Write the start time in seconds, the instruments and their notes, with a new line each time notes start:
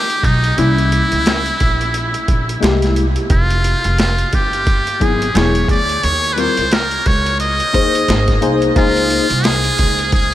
Already playing: muted trumpet G4
0.10 closed hi-hat
0.23 upright bass B1, muted trumpet D#4, kick, closed hi-hat
0.44 closed hi-hat
0.57 upright bass C2, tine electric piano G3 A#3 C#4 E4, muted trumpet E4, closed hi-hat
0.78 closed hi-hat
0.92 closed hi-hat
1.12 upright bass C#2, closed hi-hat
1.26 snare, closed hi-hat
1.46 closed hi-hat
1.60 upright bass A#1, kick, closed hi-hat
1.81 closed hi-hat
1.94 closed hi-hat
2.14 closed hi-hat
2.28 upright bass A#1, kick, closed hi-hat
2.49 closed hi-hat
2.60 upright bass C2, tine electric piano G#3 A#3 E4 G4, snare, closed hi-hat
2.82 snare, closed hi-hat
2.96 closed hi-hat
3.16 closed hi-hat
3.30 upright bass F1, muted trumpet F4, kick, closed hi-hat
3.50 closed hi-hat
3.64 closed hi-hat
3.84 upright bass F1, closed hi-hat
3.98 muted trumpet F4, snare, closed hi-hat
4.18 closed hi-hat
4.33 upright bass G1, muted trumpet G4, kick, closed hi-hat
4.53 closed hi-hat
4.67 kick, closed hi-hat
4.87 closed hi-hat
5.00 upright bass G#1, tine electric piano F#3 B3 E4 G#4, muted trumpet G#4, kick, closed hi-hat
5.22 closed hi-hat
5.34 upright bass E1, tine electric piano F#3 B3 E4 G#4, muted trumpet C#5, snare, closed hi-hat
5.55 closed hi-hat
5.68 upright bass D2, muted trumpet D5, kick, closed hi-hat
5.89 closed hi-hat
6.03 upright bass D#2, muted trumpet C#5, closed hi-hat
6.24 closed hi-hat
6.33 tine electric piano G3, muted trumpet B4
6.37 tine electric piano C4 F4 A#4, muted trumpet C5, closed hi-hat
6.57 upright bass C#2, closed hi-hat
6.72 muted trumpet A#4, snare, closed hi-hat
6.91 closed hi-hat
7.06 upright bass C#2, muted trumpet C#5, kick, closed hi-hat
7.26 closed hi-hat
7.40 muted trumpet D#5, closed hi-hat
7.60 closed hi-hat
7.73 upright bass D#2, tine electric piano A#3 D#4 G#4 C5, kick, closed hi-hat
7.95 closed hi-hat
8.08 upright bass G#1, snare, closed hi-hat
8.28 kick, snare, closed hi-hat
8.41 upright bass C2, tine electric piano A#3 D#4 G#4 C5, closed hi-hat
8.62 closed hi-hat
8.75 upright bass C#2, tine electric piano A#3 D#4 G#4 C5, muted trumpet F4, kick, closed hi-hat
8.97 closed hi-hat
9.10 closed hi-hat
9.30 upright bass C2, closed hi-hat
9.44 muted trumpet G#4, snare, closed hi-hat
9.64 closed hi-hat
9.78 upright bass C#2, kick, closed hi-hat
9.99 closed hi-hat
10.12 muted trumpet G#4, kick, closed hi-hat